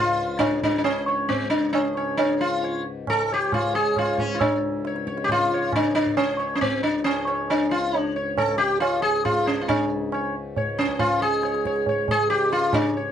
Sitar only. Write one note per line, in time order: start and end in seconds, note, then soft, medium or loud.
0.00 0.42 F4 medium
0.39 0.62 D4 medium
0.63 0.77 D4 medium
0.78 0.84 D4 medium
0.84 1.28 C#4 medium
1.08 1.29 C#5 soft
1.29 1.49 C4 medium
1.50 1.72 D4 medium
1.73 1.85 D4 medium
1.85 2.17 C#4 medium
1.97 2.18 C#5 soft
2.17 2.41 D4 medium
2.41 2.82 F4 medium
2.64 2.85 C#5 soft
3.10 3.32 A4 loud
3.32 3.53 G4 medium
3.32 3.52 C#5 soft
3.54 3.75 F4 medium
3.74 3.98 G#4 medium
3.74 3.95 C#5 soft
3.98 4.21 F4 medium
3.98 4.17 C#5 soft
4.19 4.35 C#4 medium
4.19 4.39 C#5 soft
4.35 4.41 F4 medium
4.41 5.04 D4 medium
4.87 5.06 C#5 soft
5.07 5.28 C#5 soft
5.24 5.30 G4 medium
5.32 5.72 F4 medium
5.54 5.74 C#5 soft
5.76 5.94 D4 medium
5.95 6.16 D4 medium
6.17 6.54 C#4 medium
6.39 6.60 C#5 soft
6.55 6.61 C#4 medium
6.61 6.83 C4 medium
6.83 7.04 D4 medium
7.04 7.50 C#4 medium
7.27 7.48 C#5 soft
7.50 7.73 D4 medium
7.71 8.00 F4 medium
7.94 8.15 C#5 soft
8.00 8.13 D4 medium
8.16 8.36 C#5 soft
8.38 8.57 A4 medium
8.58 8.80 G4 loud
8.80 9.02 F4 medium
9.02 9.24 G#4 medium
9.25 9.46 F4 medium
9.47 9.63 C#4 medium
9.61 9.69 F4 soft
9.68 10.30 D4 medium
10.14 10.34 C#5 soft
10.57 10.77 C#5 soft
10.79 10.99 C#4 medium
10.99 11.20 F4 medium
11.22 11.83 G#4 medium
11.45 11.64 C#5 soft
11.66 11.86 C#5 soft
11.89 12.08 C#5 soft
12.11 12.29 G#4 loud
12.30 12.52 G4 medium
12.52 12.75 F4 medium
12.74 12.94 D4 medium
12.97 13.12 C#5 soft